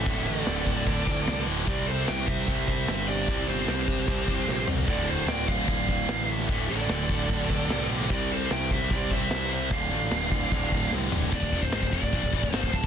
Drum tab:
CC |x-x-x-x-x-x-x-x-|x-x-x-x-x-x-x-x-|x-x-x-x-x-x-----|x-x-x-x-x-x-x-x-|
SD |----o-------o--o|----o-o-----o---|----o-------o---|----o-o-----o--o|
T2 |----------------|----------------|--------------o-|----------------|
FT |----------------|----------------|---------------o|----------------|
BD |o-----o-o-o-----|o-----o-o-o-----|o-----o-o-o-----|o-----o-o-o-----|

CC |x-x-x-x-x-x-x-x-|x-x-x-x-x-x-x-x-|x-x-x-x-x-x-----|x---x---x---x---|
SD |----o-------o--o|----o-o-----o---|----o-------o---|----o-------o---|
T2 |----------------|----------------|--------------o-|----------------|
FT |----------------|----------------|---------------o|----------------|
BD |o-----o-o-o-----|o-----o-o-o-----|o-----o-o-o-----|oooo-ooooooo-ooo|